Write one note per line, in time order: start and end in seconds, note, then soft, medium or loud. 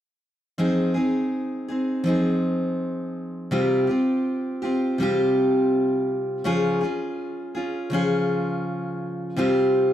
0.58 0.95 F3 medium
0.58 0.95 C4 medium
0.58 0.95 D#4 medium
0.58 0.93 G#4 medium
0.94 1.71 C4 soft
0.94 1.69 D#4 soft
0.94 1.67 G#4 soft
1.68 2.04 C4 soft
1.68 2.06 D#4 soft
1.68 2.05 G#4 soft
2.04 3.51 F3 medium
2.04 3.51 C4 medium
2.04 3.52 D#4 medium
2.09 3.52 G#4 medium
3.51 3.88 C3 medium
3.51 3.89 G3 medium
3.51 3.89 C4 medium
3.51 3.88 F4 medium
3.51 3.86 G4 medium
3.87 4.63 C4 soft
3.87 4.63 F4 soft
3.87 4.61 G4 soft
4.62 5.00 C4 soft
4.62 4.99 F4 soft
4.62 4.99 G4 soft
4.98 6.44 C3 medium
4.98 6.45 G3 medium
4.98 6.45 C4 medium
4.98 6.46 F4 medium
5.03 6.46 G4 medium
6.44 6.82 C#3 medium
6.44 6.82 F3 medium
6.44 6.82 C#4 medium
6.44 6.82 F4 medium
6.44 6.79 G#4 medium
6.81 7.56 C#4 soft
6.81 7.55 F4 soft
6.81 7.53 G#4 soft
7.55 7.92 C#4 soft
7.55 7.93 F4 soft
7.55 7.92 G#4 soft
7.90 9.36 C#3 medium
7.90 9.37 F3 medium
7.90 9.38 C#4 medium
7.94 9.37 F4 medium
7.94 9.38 G#4 medium
9.36 9.93 C3 medium
9.36 9.93 G3 medium
9.36 9.93 C4 medium
9.36 9.93 F4 medium
9.36 9.93 G4 medium